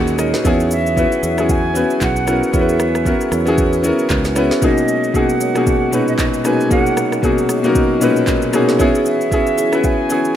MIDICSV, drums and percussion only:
0, 0, Header, 1, 2, 480
1, 0, Start_track
1, 0, Tempo, 521739
1, 411, Time_signature, 4, 2, 24, 8
1, 9533, End_track
2, 0, Start_track
2, 0, Title_t, "Drums"
2, 67, Note_on_c, 9, 82, 51
2, 159, Note_off_c, 9, 82, 0
2, 169, Note_on_c, 9, 82, 91
2, 172, Note_on_c, 9, 37, 91
2, 261, Note_off_c, 9, 82, 0
2, 264, Note_off_c, 9, 37, 0
2, 311, Note_on_c, 9, 38, 71
2, 315, Note_on_c, 9, 82, 48
2, 403, Note_off_c, 9, 38, 0
2, 407, Note_off_c, 9, 82, 0
2, 412, Note_on_c, 9, 36, 117
2, 412, Note_on_c, 9, 82, 78
2, 504, Note_off_c, 9, 36, 0
2, 504, Note_off_c, 9, 82, 0
2, 554, Note_on_c, 9, 82, 54
2, 646, Note_off_c, 9, 82, 0
2, 652, Note_on_c, 9, 82, 86
2, 744, Note_off_c, 9, 82, 0
2, 795, Note_on_c, 9, 82, 50
2, 887, Note_off_c, 9, 82, 0
2, 891, Note_on_c, 9, 36, 91
2, 897, Note_on_c, 9, 82, 64
2, 983, Note_off_c, 9, 36, 0
2, 989, Note_off_c, 9, 82, 0
2, 1030, Note_on_c, 9, 82, 54
2, 1122, Note_off_c, 9, 82, 0
2, 1134, Note_on_c, 9, 82, 106
2, 1226, Note_off_c, 9, 82, 0
2, 1269, Note_on_c, 9, 82, 54
2, 1270, Note_on_c, 9, 37, 89
2, 1361, Note_off_c, 9, 82, 0
2, 1362, Note_off_c, 9, 37, 0
2, 1373, Note_on_c, 9, 36, 111
2, 1373, Note_on_c, 9, 82, 78
2, 1465, Note_off_c, 9, 36, 0
2, 1465, Note_off_c, 9, 82, 0
2, 1613, Note_on_c, 9, 82, 99
2, 1705, Note_off_c, 9, 82, 0
2, 1751, Note_on_c, 9, 82, 51
2, 1843, Note_off_c, 9, 82, 0
2, 1851, Note_on_c, 9, 36, 89
2, 1852, Note_on_c, 9, 39, 89
2, 1852, Note_on_c, 9, 82, 78
2, 1943, Note_off_c, 9, 36, 0
2, 1944, Note_off_c, 9, 39, 0
2, 1944, Note_off_c, 9, 82, 0
2, 1990, Note_on_c, 9, 82, 50
2, 2082, Note_off_c, 9, 82, 0
2, 2092, Note_on_c, 9, 82, 91
2, 2094, Note_on_c, 9, 37, 87
2, 2184, Note_off_c, 9, 82, 0
2, 2186, Note_off_c, 9, 37, 0
2, 2238, Note_on_c, 9, 82, 47
2, 2330, Note_off_c, 9, 82, 0
2, 2333, Note_on_c, 9, 36, 117
2, 2333, Note_on_c, 9, 82, 78
2, 2425, Note_off_c, 9, 36, 0
2, 2425, Note_off_c, 9, 82, 0
2, 2474, Note_on_c, 9, 82, 56
2, 2566, Note_off_c, 9, 82, 0
2, 2572, Note_on_c, 9, 37, 102
2, 2572, Note_on_c, 9, 82, 83
2, 2664, Note_off_c, 9, 37, 0
2, 2664, Note_off_c, 9, 82, 0
2, 2714, Note_on_c, 9, 37, 91
2, 2716, Note_on_c, 9, 82, 50
2, 2806, Note_off_c, 9, 37, 0
2, 2808, Note_off_c, 9, 82, 0
2, 2811, Note_on_c, 9, 36, 93
2, 2816, Note_on_c, 9, 82, 64
2, 2903, Note_off_c, 9, 36, 0
2, 2908, Note_off_c, 9, 82, 0
2, 2951, Note_on_c, 9, 82, 55
2, 3043, Note_off_c, 9, 82, 0
2, 3052, Note_on_c, 9, 37, 94
2, 3054, Note_on_c, 9, 82, 100
2, 3144, Note_off_c, 9, 37, 0
2, 3146, Note_off_c, 9, 82, 0
2, 3189, Note_on_c, 9, 82, 54
2, 3281, Note_off_c, 9, 82, 0
2, 3292, Note_on_c, 9, 82, 80
2, 3293, Note_on_c, 9, 36, 111
2, 3384, Note_off_c, 9, 82, 0
2, 3385, Note_off_c, 9, 36, 0
2, 3430, Note_on_c, 9, 82, 52
2, 3522, Note_off_c, 9, 82, 0
2, 3532, Note_on_c, 9, 82, 100
2, 3624, Note_off_c, 9, 82, 0
2, 3670, Note_on_c, 9, 82, 49
2, 3762, Note_off_c, 9, 82, 0
2, 3770, Note_on_c, 9, 36, 98
2, 3771, Note_on_c, 9, 39, 92
2, 3771, Note_on_c, 9, 82, 76
2, 3862, Note_off_c, 9, 36, 0
2, 3863, Note_off_c, 9, 39, 0
2, 3863, Note_off_c, 9, 82, 0
2, 3907, Note_on_c, 9, 82, 52
2, 3910, Note_on_c, 9, 38, 67
2, 3999, Note_off_c, 9, 82, 0
2, 4002, Note_off_c, 9, 38, 0
2, 4010, Note_on_c, 9, 82, 88
2, 4012, Note_on_c, 9, 37, 92
2, 4102, Note_off_c, 9, 82, 0
2, 4104, Note_off_c, 9, 37, 0
2, 4151, Note_on_c, 9, 38, 70
2, 4155, Note_on_c, 9, 82, 47
2, 4243, Note_off_c, 9, 38, 0
2, 4247, Note_off_c, 9, 82, 0
2, 4252, Note_on_c, 9, 36, 120
2, 4252, Note_on_c, 9, 82, 81
2, 4344, Note_off_c, 9, 36, 0
2, 4344, Note_off_c, 9, 82, 0
2, 4394, Note_on_c, 9, 82, 58
2, 4486, Note_off_c, 9, 82, 0
2, 4492, Note_on_c, 9, 82, 81
2, 4584, Note_off_c, 9, 82, 0
2, 4635, Note_on_c, 9, 82, 47
2, 4727, Note_off_c, 9, 82, 0
2, 4731, Note_on_c, 9, 36, 96
2, 4736, Note_on_c, 9, 82, 62
2, 4823, Note_off_c, 9, 36, 0
2, 4828, Note_off_c, 9, 82, 0
2, 4870, Note_on_c, 9, 82, 54
2, 4962, Note_off_c, 9, 82, 0
2, 4974, Note_on_c, 9, 82, 104
2, 5066, Note_off_c, 9, 82, 0
2, 5110, Note_on_c, 9, 37, 86
2, 5110, Note_on_c, 9, 82, 51
2, 5202, Note_off_c, 9, 37, 0
2, 5202, Note_off_c, 9, 82, 0
2, 5213, Note_on_c, 9, 36, 115
2, 5213, Note_on_c, 9, 82, 80
2, 5305, Note_off_c, 9, 36, 0
2, 5305, Note_off_c, 9, 82, 0
2, 5454, Note_on_c, 9, 82, 102
2, 5546, Note_off_c, 9, 82, 0
2, 5591, Note_on_c, 9, 82, 54
2, 5683, Note_off_c, 9, 82, 0
2, 5691, Note_on_c, 9, 36, 93
2, 5692, Note_on_c, 9, 39, 92
2, 5692, Note_on_c, 9, 82, 78
2, 5783, Note_off_c, 9, 36, 0
2, 5784, Note_off_c, 9, 39, 0
2, 5784, Note_off_c, 9, 82, 0
2, 5830, Note_on_c, 9, 82, 51
2, 5922, Note_off_c, 9, 82, 0
2, 5931, Note_on_c, 9, 82, 92
2, 5933, Note_on_c, 9, 37, 88
2, 6023, Note_off_c, 9, 82, 0
2, 6025, Note_off_c, 9, 37, 0
2, 6076, Note_on_c, 9, 82, 46
2, 6168, Note_off_c, 9, 82, 0
2, 6172, Note_on_c, 9, 36, 122
2, 6173, Note_on_c, 9, 82, 78
2, 6264, Note_off_c, 9, 36, 0
2, 6265, Note_off_c, 9, 82, 0
2, 6315, Note_on_c, 9, 82, 56
2, 6407, Note_off_c, 9, 82, 0
2, 6413, Note_on_c, 9, 37, 99
2, 6413, Note_on_c, 9, 82, 82
2, 6505, Note_off_c, 9, 37, 0
2, 6505, Note_off_c, 9, 82, 0
2, 6553, Note_on_c, 9, 37, 89
2, 6555, Note_on_c, 9, 82, 50
2, 6645, Note_off_c, 9, 37, 0
2, 6647, Note_off_c, 9, 82, 0
2, 6650, Note_on_c, 9, 36, 94
2, 6656, Note_on_c, 9, 82, 64
2, 6742, Note_off_c, 9, 36, 0
2, 6748, Note_off_c, 9, 82, 0
2, 6790, Note_on_c, 9, 82, 56
2, 6882, Note_off_c, 9, 82, 0
2, 6891, Note_on_c, 9, 37, 91
2, 6893, Note_on_c, 9, 82, 102
2, 6983, Note_off_c, 9, 37, 0
2, 6985, Note_off_c, 9, 82, 0
2, 7028, Note_on_c, 9, 82, 55
2, 7120, Note_off_c, 9, 82, 0
2, 7132, Note_on_c, 9, 36, 112
2, 7132, Note_on_c, 9, 82, 79
2, 7224, Note_off_c, 9, 36, 0
2, 7224, Note_off_c, 9, 82, 0
2, 7372, Note_on_c, 9, 82, 105
2, 7464, Note_off_c, 9, 82, 0
2, 7510, Note_on_c, 9, 82, 50
2, 7602, Note_off_c, 9, 82, 0
2, 7610, Note_on_c, 9, 36, 97
2, 7610, Note_on_c, 9, 82, 77
2, 7611, Note_on_c, 9, 39, 89
2, 7702, Note_off_c, 9, 36, 0
2, 7702, Note_off_c, 9, 82, 0
2, 7703, Note_off_c, 9, 39, 0
2, 7747, Note_on_c, 9, 82, 51
2, 7839, Note_off_c, 9, 82, 0
2, 7849, Note_on_c, 9, 82, 92
2, 7852, Note_on_c, 9, 37, 93
2, 7941, Note_off_c, 9, 82, 0
2, 7944, Note_off_c, 9, 37, 0
2, 7991, Note_on_c, 9, 38, 72
2, 7995, Note_on_c, 9, 82, 48
2, 8083, Note_off_c, 9, 38, 0
2, 8087, Note_off_c, 9, 82, 0
2, 8092, Note_on_c, 9, 36, 120
2, 8092, Note_on_c, 9, 82, 81
2, 8184, Note_off_c, 9, 36, 0
2, 8184, Note_off_c, 9, 82, 0
2, 8234, Note_on_c, 9, 82, 55
2, 8326, Note_off_c, 9, 82, 0
2, 8331, Note_on_c, 9, 82, 84
2, 8423, Note_off_c, 9, 82, 0
2, 8474, Note_on_c, 9, 82, 51
2, 8566, Note_off_c, 9, 82, 0
2, 8570, Note_on_c, 9, 36, 95
2, 8574, Note_on_c, 9, 82, 65
2, 8662, Note_off_c, 9, 36, 0
2, 8666, Note_off_c, 9, 82, 0
2, 8709, Note_on_c, 9, 82, 55
2, 8801, Note_off_c, 9, 82, 0
2, 8812, Note_on_c, 9, 82, 105
2, 8904, Note_off_c, 9, 82, 0
2, 8947, Note_on_c, 9, 82, 53
2, 8948, Note_on_c, 9, 37, 92
2, 9039, Note_off_c, 9, 82, 0
2, 9040, Note_off_c, 9, 37, 0
2, 9050, Note_on_c, 9, 82, 80
2, 9052, Note_on_c, 9, 36, 115
2, 9142, Note_off_c, 9, 82, 0
2, 9144, Note_off_c, 9, 36, 0
2, 9290, Note_on_c, 9, 82, 100
2, 9382, Note_off_c, 9, 82, 0
2, 9428, Note_on_c, 9, 82, 51
2, 9520, Note_off_c, 9, 82, 0
2, 9533, End_track
0, 0, End_of_file